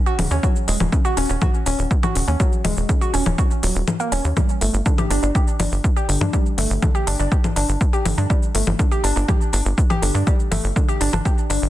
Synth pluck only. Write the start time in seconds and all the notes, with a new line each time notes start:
0.06 F#4 F#5
0.19 C#3 C#4
0.31 C#4 C#5
0.43 F#3 F#4
0.68 G#3 G#4
0.92 C#3 C#4
1.05 F#4 F#5
1.17 C#4 C#5
1.29 C#4 C#5
1.42 F#4 F#5
1.66 C#4 C#5
2.03 F#4 F#5
2.15 C#3 C#4
2.28 C#4 C#5
2.40 F#3 F#4
2.64 G#3 G#4
2.89 C#3 C#4
3.01 F#4 F#5
3.14 C#4 C#5
3.26 C#4 C#5
3.38 F#4 F#5
3.63 F#3 F#4
4.00 A#3 A#4
4.12 C#4 C#5
4.37 G3 G4
4.61 A3 A4
4.86 D3 D4
4.98 G4 G5
5.10 D4 D5
5.23 D4 D5
5.35 G4 G5
5.59 D4 D5
5.96 G4 G5
6.09 D3 D4
6.21 D4 D5
6.33 G3 G4
6.58 A3 A4
6.82 D3 D4
6.95 G4 G5
7.07 D4 D5
7.19 D4 D5
7.32 G4 G5
7.56 D4 D5
7.93 G4 G5
8.05 D3 D4
8.18 D4 D5
8.30 G3 G4
8.55 A3 A4
8.79 D3 D4
8.91 G4 G5
9.04 D4 D5
9.16 D4 D5
9.28 G4 G5
9.53 D4 D5
9.90 G4 G5
10.02 D3 D4
10.15 D4 D5
10.27 G3 G4
10.51 A3 A4
10.76 D3 D4
10.88 G4 G5
11.01 D4 D5
11.13 D4 D5
11.25 G4 G5
11.50 D4 D5